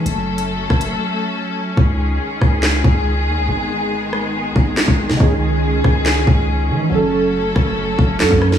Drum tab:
HH |x--x---x--------|----------------|----------------|----------------|
CP |----------------|--------x-------|------------x---|--------x-------|
SD |------r---------|------r-o-------|------r-----o--o|------r-o-------|
BD |------o---------|o-----o---o-----|----------o--o--|o-----o---o-----|

HH |----------------|
CP |------------x---|
SD |------r-----o-ro|
BD |------o---o--o--|